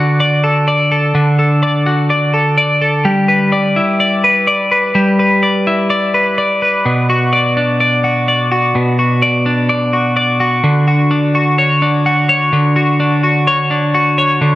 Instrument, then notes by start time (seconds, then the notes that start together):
clean electric guitar
Already playing: D3 F#4 A4 D5
0.20 D5
0.44 A4
0.68 D5
0.92 A4
1.15 D3
1.39 A4
1.63 D5
1.86 F#4
2.10 D5
2.34 A4
2.58 D5
2.82 A4
3.05 G3
3.28 B4
3.52 D5
3.76 E4
4.00 D5
4.24 B4
4.47 D5
4.72 B4
4.95 G3
5.19 B4
5.43 D5
5.67 E4
5.90 D5
6.14 B4
6.38 D5
6.62 B4
6.86 B2
7.10 F#4
7.33 D5
7.57 D4
7.80 D5
8.04 F#4
8.28 D5
8.52 F#4
8.75 B2
8.99 F#4
9.22 D5
9.46 D4
9.69 D5
9.93 F#4
10.17 D5
10.40 F#4
10.64 D3
10.88 F#4
11.11 D4
11.35 F#4
11.58 C#5
11.82 D4
12.06 F#4
12.29 C#5
12.53 D3
12.76 F#4
13.00 D4
13.24 F#4
13.47 C#5
13.71 D4
13.94 F#4
14.18 C#5
14.41 D3